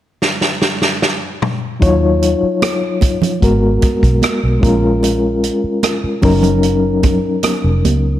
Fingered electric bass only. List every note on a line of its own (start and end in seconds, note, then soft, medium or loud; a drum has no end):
1.82 2.34 D#2 medium
2.43 muted fingered electric bass stroke soft
3.43 3.77 G#1 loud
3.83 muted fingered electric bass stroke soft
4.03 4.20 B1 medium
4.43 4.60 B1 medium
4.63 5.49 A#1 medium
5.64 muted fingered electric bass stroke soft
6.04 muted fingered electric bass stroke soft
6.23 7.20 F#1 medium
7.64 7.81 F1 medium
7.84 8.19 C#2 medium